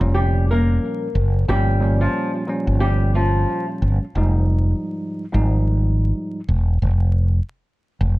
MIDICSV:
0, 0, Header, 1, 4, 480
1, 0, Start_track
1, 0, Key_signature, -4, "minor"
1, 0, Tempo, 666667
1, 1066, Time_signature, 4, 2, 24, 8
1, 5898, End_track
2, 0, Start_track
2, 0, Title_t, "Nylon-string guitar"
2, 0, Program_c, 0, 24
2, 103, Note_on_c, 0, 67, 84
2, 109, Note_on_c, 0, 55, 67
2, 321, Note_off_c, 0, 67, 0
2, 324, Note_off_c, 0, 55, 0
2, 365, Note_on_c, 0, 70, 78
2, 371, Note_on_c, 0, 58, 60
2, 1047, Note_off_c, 0, 70, 0
2, 1050, Note_off_c, 0, 58, 0
2, 1073, Note_on_c, 0, 67, 115
2, 1079, Note_on_c, 0, 55, 97
2, 1423, Note_off_c, 0, 67, 0
2, 1426, Note_off_c, 0, 55, 0
2, 1445, Note_on_c, 0, 65, 71
2, 1450, Note_on_c, 0, 53, 58
2, 1659, Note_off_c, 0, 65, 0
2, 1662, Note_off_c, 0, 53, 0
2, 2019, Note_on_c, 0, 67, 92
2, 2024, Note_on_c, 0, 55, 70
2, 2238, Note_off_c, 0, 67, 0
2, 2241, Note_off_c, 0, 55, 0
2, 2269, Note_on_c, 0, 65, 80
2, 2274, Note_on_c, 0, 53, 67
2, 2620, Note_off_c, 0, 65, 0
2, 2623, Note_off_c, 0, 53, 0
2, 5898, End_track
3, 0, Start_track
3, 0, Title_t, "Tine electric piano"
3, 0, Program_c, 1, 4
3, 0, Note_on_c, 1, 46, 96
3, 2, Note_on_c, 1, 53, 83
3, 7, Note_on_c, 1, 55, 78
3, 12, Note_on_c, 1, 61, 98
3, 765, Note_off_c, 1, 46, 0
3, 768, Note_off_c, 1, 53, 0
3, 771, Note_off_c, 1, 55, 0
3, 773, Note_off_c, 1, 61, 0
3, 1065, Note_on_c, 1, 46, 94
3, 1069, Note_on_c, 1, 53, 80
3, 1075, Note_on_c, 1, 55, 87
3, 1080, Note_on_c, 1, 61, 101
3, 1287, Note_off_c, 1, 46, 0
3, 1291, Note_off_c, 1, 53, 0
3, 1294, Note_off_c, 1, 55, 0
3, 1295, Note_on_c, 1, 46, 90
3, 1296, Note_off_c, 1, 61, 0
3, 1301, Note_on_c, 1, 53, 81
3, 1306, Note_on_c, 1, 55, 83
3, 1312, Note_on_c, 1, 61, 94
3, 1747, Note_off_c, 1, 46, 0
3, 1750, Note_off_c, 1, 53, 0
3, 1752, Note_off_c, 1, 55, 0
3, 1755, Note_off_c, 1, 61, 0
3, 1780, Note_on_c, 1, 46, 85
3, 1785, Note_on_c, 1, 53, 89
3, 1791, Note_on_c, 1, 55, 87
3, 1796, Note_on_c, 1, 61, 96
3, 2899, Note_off_c, 1, 46, 0
3, 2902, Note_off_c, 1, 53, 0
3, 2904, Note_off_c, 1, 55, 0
3, 2907, Note_off_c, 1, 61, 0
3, 2992, Note_on_c, 1, 44, 88
3, 2998, Note_on_c, 1, 53, 88
3, 3003, Note_on_c, 1, 55, 84
3, 3008, Note_on_c, 1, 63, 105
3, 3769, Note_off_c, 1, 44, 0
3, 3772, Note_off_c, 1, 53, 0
3, 3774, Note_off_c, 1, 55, 0
3, 3777, Note_off_c, 1, 63, 0
3, 3829, Note_on_c, 1, 44, 88
3, 3834, Note_on_c, 1, 53, 83
3, 3840, Note_on_c, 1, 55, 81
3, 3845, Note_on_c, 1, 63, 101
3, 4601, Note_off_c, 1, 44, 0
3, 4604, Note_off_c, 1, 53, 0
3, 4607, Note_off_c, 1, 55, 0
3, 4609, Note_off_c, 1, 63, 0
3, 5898, End_track
4, 0, Start_track
4, 0, Title_t, "Fretless electric bass"
4, 0, Program_c, 2, 35
4, 5, Note_on_c, 2, 29, 96
4, 559, Note_off_c, 2, 29, 0
4, 829, Note_on_c, 2, 30, 102
4, 1034, Note_off_c, 2, 30, 0
4, 1069, Note_on_c, 2, 31, 108
4, 1481, Note_off_c, 2, 31, 0
4, 1924, Note_on_c, 2, 31, 91
4, 2479, Note_off_c, 2, 31, 0
4, 2750, Note_on_c, 2, 31, 89
4, 2865, Note_off_c, 2, 31, 0
4, 2991, Note_on_c, 2, 29, 105
4, 3402, Note_off_c, 2, 29, 0
4, 3846, Note_on_c, 2, 32, 97
4, 4400, Note_off_c, 2, 32, 0
4, 4669, Note_on_c, 2, 28, 95
4, 4875, Note_off_c, 2, 28, 0
4, 4910, Note_on_c, 2, 29, 101
4, 5321, Note_off_c, 2, 29, 0
4, 5765, Note_on_c, 2, 29, 102
4, 5863, Note_off_c, 2, 29, 0
4, 5898, End_track
0, 0, End_of_file